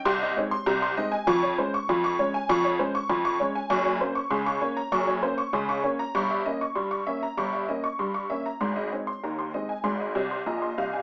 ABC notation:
X:1
M:2/4
L:1/16
Q:1/4=98
K:Ab
V:1 name="Honky-tonk piano"
c' e d c' b c' e a | [K:Db] d' d c d' c' d' d a | d' d c d' c' d' d a | d' d c d' c' d' d b |
d' d c d' c' d' d b | d' =e _e d' c' d' =e b | d' =e _e d' c' d' =e b | c' e d c' b c' e a |
c' e d c' b c' e a |]
V:2 name="Honky-tonk piano" clef=bass
[C,,C,]2 [A,CE]2 [C,,C,]2 [A,CE]2 | [K:Db] [F,,F,]2 [A,D]2 [F,,F,]2 [A,D]2 | [F,,F,]2 [A,D]2 [F,,F,]2 [A,D]2 | [G,,,G,,]2 [B,D]2 [D,,D,]2 [B,D]2 |
[G,,,G,,]2 [B,D]2 [D,,D,]2 [B,D]2 | [=G,,,=G,,]2 [B,D]2 [G,,=G,]2 [B,D]2 | [=G,,,=G,,]2 [B,D]2 [G,,=G,]2 [B,D]2 | [A,,,A,,]2 [A,CE]2 [E,,E,]2 [A,CE]2 |
[A,,,A,,]2 [C,,C,]2 [B,,,B,,e]2 [C,,C,f]2 |]